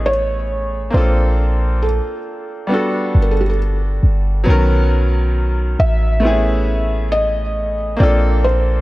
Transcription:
0, 0, Header, 1, 4, 480
1, 0, Start_track
1, 0, Tempo, 882353
1, 508, Time_signature, 4, 2, 24, 8
1, 4793, End_track
2, 0, Start_track
2, 0, Title_t, "Felt piano"
2, 0, Program_c, 0, 0
2, 31, Note_on_c, 0, 73, 94
2, 512, Note_on_c, 0, 72, 88
2, 524, Note_off_c, 0, 73, 0
2, 992, Note_on_c, 0, 69, 68
2, 1005, Note_off_c, 0, 72, 0
2, 1730, Note_off_c, 0, 69, 0
2, 1753, Note_on_c, 0, 70, 61
2, 1801, Note_off_c, 0, 70, 0
2, 1802, Note_on_c, 0, 69, 60
2, 1850, Note_off_c, 0, 69, 0
2, 1853, Note_on_c, 0, 67, 60
2, 1901, Note_off_c, 0, 67, 0
2, 1901, Note_on_c, 0, 69, 59
2, 1949, Note_off_c, 0, 69, 0
2, 3153, Note_on_c, 0, 76, 104
2, 3849, Note_off_c, 0, 76, 0
2, 3872, Note_on_c, 0, 75, 97
2, 4352, Note_on_c, 0, 74, 91
2, 4364, Note_off_c, 0, 75, 0
2, 4593, Note_on_c, 0, 72, 84
2, 4597, Note_off_c, 0, 74, 0
2, 4793, Note_off_c, 0, 72, 0
2, 4793, End_track
3, 0, Start_track
3, 0, Title_t, "Grand piano"
3, 0, Program_c, 1, 0
3, 0, Control_c, 1, 64, 127
3, 0, Note_on_c, 1, 57, 61
3, 0, Note_on_c, 1, 59, 57
3, 0, Note_on_c, 1, 61, 58
3, 0, Note_on_c, 1, 64, 58
3, 0, Note_on_c, 1, 68, 65
3, 481, Note_off_c, 1, 57, 0
3, 486, Note_off_c, 1, 59, 0
3, 490, Note_off_c, 1, 61, 0
3, 492, Note_on_c, 1, 58, 61
3, 495, Note_off_c, 1, 64, 0
3, 499, Note_off_c, 1, 68, 0
3, 501, Note_on_c, 1, 60, 58
3, 510, Note_on_c, 1, 62, 53
3, 514, Control_c, 1, 64, 0
3, 519, Note_on_c, 1, 65, 57
3, 528, Note_on_c, 1, 69, 70
3, 611, Control_c, 1, 64, 127
3, 1441, Note_off_c, 1, 58, 0
3, 1445, Note_off_c, 1, 60, 0
3, 1450, Note_off_c, 1, 62, 0
3, 1452, Note_on_c, 1, 55, 60
3, 1454, Note_off_c, 1, 65, 0
3, 1459, Note_off_c, 1, 69, 0
3, 1462, Note_on_c, 1, 59, 59
3, 1470, Note_on_c, 1, 62, 56
3, 1476, Control_c, 1, 64, 0
3, 1480, Note_on_c, 1, 66, 58
3, 1488, Note_on_c, 1, 69, 66
3, 1563, Control_c, 1, 64, 127
3, 2401, Note_off_c, 1, 55, 0
3, 2406, Note_off_c, 1, 59, 0
3, 2410, Note_off_c, 1, 62, 0
3, 2414, Note_on_c, 1, 54, 74
3, 2415, Note_off_c, 1, 66, 0
3, 2419, Note_off_c, 1, 69, 0
3, 2422, Note_on_c, 1, 59, 65
3, 2431, Note_on_c, 1, 61, 68
3, 2436, Control_c, 1, 64, 0
3, 2440, Note_on_c, 1, 51, 68
3, 2449, Note_on_c, 1, 70, 79
3, 2523, Control_c, 1, 64, 127
3, 3362, Note_off_c, 1, 54, 0
3, 3366, Note_off_c, 1, 59, 0
3, 3371, Note_off_c, 1, 61, 0
3, 3372, Note_on_c, 1, 57, 65
3, 3375, Note_off_c, 1, 51, 0
3, 3380, Note_off_c, 1, 70, 0
3, 3381, Note_on_c, 1, 59, 60
3, 3390, Note_on_c, 1, 60, 48
3, 3396, Control_c, 1, 64, 0
3, 3399, Note_on_c, 1, 64, 60
3, 3408, Note_on_c, 1, 68, 68
3, 3425, Note_off_c, 1, 60, 0
3, 3425, Note_on_c, 1, 61, 57
3, 3481, Control_c, 1, 64, 127
3, 4321, Note_off_c, 1, 57, 0
3, 4325, Note_off_c, 1, 59, 0
3, 4333, Note_on_c, 1, 58, 63
3, 4335, Note_off_c, 1, 64, 0
3, 4339, Note_off_c, 1, 68, 0
3, 4342, Note_on_c, 1, 60, 59
3, 4348, Note_off_c, 1, 61, 0
3, 4351, Note_on_c, 1, 62, 54
3, 4356, Control_c, 1, 64, 0
3, 4359, Note_on_c, 1, 65, 58
3, 4369, Note_on_c, 1, 69, 70
3, 4437, Control_c, 1, 64, 127
3, 4793, Note_off_c, 1, 58, 0
3, 4793, Note_off_c, 1, 60, 0
3, 4793, Note_off_c, 1, 62, 0
3, 4793, Note_off_c, 1, 65, 0
3, 4793, Note_off_c, 1, 69, 0
3, 4793, End_track
4, 0, Start_track
4, 0, Title_t, "808-style bass"
4, 0, Program_c, 2, 38
4, 0, Note_on_c, 2, 33, 101
4, 488, Note_off_c, 2, 33, 0
4, 510, Note_on_c, 2, 34, 105
4, 1087, Note_off_c, 2, 34, 0
4, 1711, Note_on_c, 2, 31, 98
4, 2170, Note_off_c, 2, 31, 0
4, 2191, Note_on_c, 2, 31, 103
4, 2420, Note_off_c, 2, 31, 0
4, 2431, Note_on_c, 2, 35, 101
4, 3128, Note_off_c, 2, 35, 0
4, 3151, Note_on_c, 2, 33, 102
4, 4328, Note_off_c, 2, 33, 0
4, 4351, Note_on_c, 2, 34, 105
4, 4793, Note_off_c, 2, 34, 0
4, 4793, End_track
0, 0, End_of_file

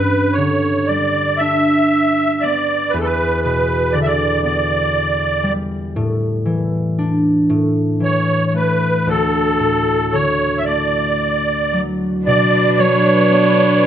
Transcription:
0, 0, Header, 1, 5, 480
1, 0, Start_track
1, 0, Key_signature, 2, "major"
1, 0, Tempo, 1045296
1, 877, Tempo, 1010101
1, 1361, Time_signature, 6, 3, 24, 8
1, 2797, Tempo, 1029160
1, 3757, Tempo, 1058201
1, 6413, End_track
2, 0, Start_track
2, 0, Title_t, "Accordion"
2, 0, Program_c, 0, 21
2, 0, Note_on_c, 0, 71, 62
2, 151, Note_on_c, 0, 73, 56
2, 161, Note_off_c, 0, 71, 0
2, 396, Note_on_c, 0, 74, 62
2, 404, Note_off_c, 0, 73, 0
2, 631, Note_on_c, 0, 76, 66
2, 645, Note_off_c, 0, 74, 0
2, 1114, Note_on_c, 0, 74, 63
2, 1130, Note_off_c, 0, 76, 0
2, 1345, Note_on_c, 0, 71, 66
2, 1365, Note_off_c, 0, 74, 0
2, 1386, Note_off_c, 0, 71, 0
2, 1394, Note_on_c, 0, 69, 54
2, 1414, Note_on_c, 0, 71, 65
2, 1425, Note_off_c, 0, 69, 0
2, 1587, Note_off_c, 0, 71, 0
2, 1594, Note_on_c, 0, 71, 56
2, 1830, Note_on_c, 0, 74, 61
2, 1843, Note_off_c, 0, 71, 0
2, 1868, Note_off_c, 0, 74, 0
2, 1880, Note_on_c, 0, 76, 56
2, 1896, Note_on_c, 0, 74, 65
2, 1907, Note_off_c, 0, 76, 0
2, 2065, Note_off_c, 0, 74, 0
2, 2072, Note_on_c, 0, 74, 62
2, 2594, Note_off_c, 0, 74, 0
2, 3768, Note_on_c, 0, 73, 68
2, 3958, Note_off_c, 0, 73, 0
2, 3964, Note_on_c, 0, 73, 46
2, 3995, Note_off_c, 0, 73, 0
2, 4006, Note_on_c, 0, 71, 58
2, 4244, Note_off_c, 0, 71, 0
2, 4247, Note_on_c, 0, 69, 67
2, 4719, Note_on_c, 0, 73, 64
2, 4732, Note_off_c, 0, 69, 0
2, 4923, Note_on_c, 0, 76, 48
2, 4931, Note_off_c, 0, 73, 0
2, 4954, Note_off_c, 0, 76, 0
2, 4955, Note_on_c, 0, 74, 57
2, 5481, Note_off_c, 0, 74, 0
2, 5687, Note_on_c, 0, 74, 70
2, 5923, Note_on_c, 0, 73, 72
2, 5930, Note_off_c, 0, 74, 0
2, 6413, Note_off_c, 0, 73, 0
2, 6413, End_track
3, 0, Start_track
3, 0, Title_t, "Cello"
3, 0, Program_c, 1, 42
3, 5679, Note_on_c, 1, 62, 72
3, 6413, Note_off_c, 1, 62, 0
3, 6413, End_track
4, 0, Start_track
4, 0, Title_t, "String section"
4, 0, Program_c, 2, 48
4, 5683, Note_on_c, 2, 62, 61
4, 5686, Note_on_c, 2, 54, 64
4, 5687, Note_on_c, 2, 71, 74
4, 6413, Note_off_c, 2, 54, 0
4, 6413, Note_off_c, 2, 62, 0
4, 6413, Note_off_c, 2, 71, 0
4, 6413, End_track
5, 0, Start_track
5, 0, Title_t, "Harp"
5, 0, Program_c, 3, 46
5, 0, Note_on_c, 3, 43, 40
5, 0, Note_on_c, 3, 57, 37
5, 0, Note_on_c, 3, 61, 36
5, 0, Note_on_c, 3, 64, 39
5, 169, Note_on_c, 3, 50, 34
5, 197, Note_off_c, 3, 61, 0
5, 387, Note_off_c, 3, 64, 0
5, 413, Note_on_c, 3, 55, 36
5, 483, Note_off_c, 3, 57, 0
5, 647, Note_on_c, 3, 62, 39
5, 1126, Note_on_c, 3, 59, 37
5, 1366, Note_on_c, 3, 40, 50
5, 1385, Note_off_c, 3, 43, 0
5, 1385, Note_off_c, 3, 50, 0
5, 1385, Note_off_c, 3, 55, 0
5, 1608, Note_on_c, 3, 47, 37
5, 1841, Note_on_c, 3, 50, 41
5, 1863, Note_off_c, 3, 47, 0
5, 1970, Note_off_c, 3, 62, 0
5, 2074, Note_off_c, 3, 59, 0
5, 2076, Note_on_c, 3, 59, 45
5, 2551, Note_on_c, 3, 55, 44
5, 2802, Note_on_c, 3, 45, 52
5, 2820, Note_off_c, 3, 40, 0
5, 2820, Note_off_c, 3, 50, 0
5, 2820, Note_off_c, 3, 55, 0
5, 3033, Note_on_c, 3, 52, 42
5, 3280, Note_on_c, 3, 62, 43
5, 3512, Note_off_c, 3, 45, 0
5, 3518, Note_on_c, 3, 45, 51
5, 3538, Note_off_c, 3, 52, 0
5, 3538, Note_off_c, 3, 59, 0
5, 3753, Note_on_c, 3, 52, 39
5, 3997, Note_on_c, 3, 57, 37
5, 4238, Note_on_c, 3, 38, 45
5, 4254, Note_off_c, 3, 45, 0
5, 4254, Note_off_c, 3, 52, 0
5, 4476, Note_on_c, 3, 45, 35
5, 4562, Note_off_c, 3, 62, 0
5, 4720, Note_on_c, 3, 50, 34
5, 4733, Note_off_c, 3, 45, 0
5, 4962, Note_off_c, 3, 57, 0
5, 4964, Note_on_c, 3, 57, 39
5, 5446, Note_on_c, 3, 54, 32
5, 5690, Note_on_c, 3, 47, 54
5, 5702, Note_off_c, 3, 38, 0
5, 5702, Note_off_c, 3, 50, 0
5, 5702, Note_off_c, 3, 54, 0
5, 5926, Note_on_c, 3, 54, 41
5, 6161, Note_on_c, 3, 59, 47
5, 6399, Note_on_c, 3, 62, 51
5, 6413, Note_off_c, 3, 47, 0
5, 6413, Note_off_c, 3, 54, 0
5, 6413, Note_off_c, 3, 57, 0
5, 6413, Note_off_c, 3, 59, 0
5, 6413, Note_off_c, 3, 62, 0
5, 6413, End_track
0, 0, End_of_file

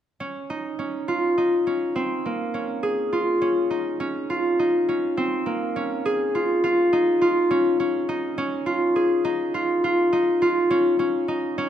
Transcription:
0, 0, Header, 1, 2, 480
1, 0, Start_track
1, 0, Key_signature, -5, "minor"
1, 0, Tempo, 583658
1, 169, Time_signature, 11, 3, 24, 8
1, 9615, End_track
2, 0, Start_track
2, 0, Title_t, "Harp"
2, 0, Program_c, 0, 46
2, 166, Note_on_c, 0, 61, 51
2, 410, Note_on_c, 0, 63, 43
2, 645, Note_off_c, 0, 61, 0
2, 648, Note_on_c, 0, 61, 46
2, 889, Note_on_c, 0, 65, 52
2, 1128, Note_off_c, 0, 63, 0
2, 1132, Note_on_c, 0, 63, 45
2, 1367, Note_off_c, 0, 61, 0
2, 1371, Note_on_c, 0, 61, 42
2, 1608, Note_on_c, 0, 60, 53
2, 1658, Note_off_c, 0, 61, 0
2, 1855, Note_on_c, 0, 58, 42
2, 2089, Note_on_c, 0, 61, 47
2, 2139, Note_off_c, 0, 60, 0
2, 2327, Note_on_c, 0, 68, 54
2, 2567, Note_off_c, 0, 65, 0
2, 2570, Note_on_c, 0, 65, 47
2, 2805, Note_off_c, 0, 61, 0
2, 2808, Note_on_c, 0, 61, 54
2, 3043, Note_off_c, 0, 63, 0
2, 3046, Note_on_c, 0, 63, 45
2, 3286, Note_off_c, 0, 61, 0
2, 3289, Note_on_c, 0, 61, 52
2, 3531, Note_off_c, 0, 65, 0
2, 3535, Note_on_c, 0, 65, 57
2, 3774, Note_off_c, 0, 63, 0
2, 3778, Note_on_c, 0, 63, 46
2, 4015, Note_off_c, 0, 61, 0
2, 4018, Note_on_c, 0, 61, 50
2, 4197, Note_off_c, 0, 68, 0
2, 4255, Note_on_c, 0, 60, 57
2, 4304, Note_off_c, 0, 61, 0
2, 4487, Note_off_c, 0, 58, 0
2, 4490, Note_on_c, 0, 58, 44
2, 4737, Note_on_c, 0, 61, 55
2, 4786, Note_off_c, 0, 60, 0
2, 4979, Note_on_c, 0, 68, 56
2, 5217, Note_off_c, 0, 65, 0
2, 5220, Note_on_c, 0, 65, 51
2, 5455, Note_off_c, 0, 65, 0
2, 5458, Note_on_c, 0, 65, 67
2, 5694, Note_off_c, 0, 63, 0
2, 5697, Note_on_c, 0, 63, 51
2, 5930, Note_off_c, 0, 65, 0
2, 5933, Note_on_c, 0, 65, 57
2, 6169, Note_off_c, 0, 61, 0
2, 6173, Note_on_c, 0, 61, 61
2, 6409, Note_off_c, 0, 61, 0
2, 6412, Note_on_c, 0, 61, 54
2, 6648, Note_off_c, 0, 63, 0
2, 6651, Note_on_c, 0, 63, 55
2, 6849, Note_off_c, 0, 68, 0
2, 6886, Note_off_c, 0, 61, 0
2, 6890, Note_on_c, 0, 61, 66
2, 7120, Note_off_c, 0, 65, 0
2, 7123, Note_on_c, 0, 65, 51
2, 7135, Note_off_c, 0, 58, 0
2, 7366, Note_on_c, 0, 68, 56
2, 7600, Note_off_c, 0, 63, 0
2, 7604, Note_on_c, 0, 63, 65
2, 7844, Note_off_c, 0, 65, 0
2, 7847, Note_on_c, 0, 65, 54
2, 8089, Note_off_c, 0, 65, 0
2, 8092, Note_on_c, 0, 65, 61
2, 8324, Note_off_c, 0, 63, 0
2, 8328, Note_on_c, 0, 63, 57
2, 8564, Note_off_c, 0, 65, 0
2, 8567, Note_on_c, 0, 65, 61
2, 8800, Note_off_c, 0, 61, 0
2, 8803, Note_on_c, 0, 61, 63
2, 9036, Note_off_c, 0, 61, 0
2, 9039, Note_on_c, 0, 61, 56
2, 9236, Note_off_c, 0, 68, 0
2, 9275, Note_off_c, 0, 63, 0
2, 9279, Note_on_c, 0, 63, 56
2, 9519, Note_off_c, 0, 61, 0
2, 9523, Note_on_c, 0, 61, 69
2, 9615, Note_off_c, 0, 61, 0
2, 9615, Note_off_c, 0, 63, 0
2, 9615, Note_off_c, 0, 65, 0
2, 9615, End_track
0, 0, End_of_file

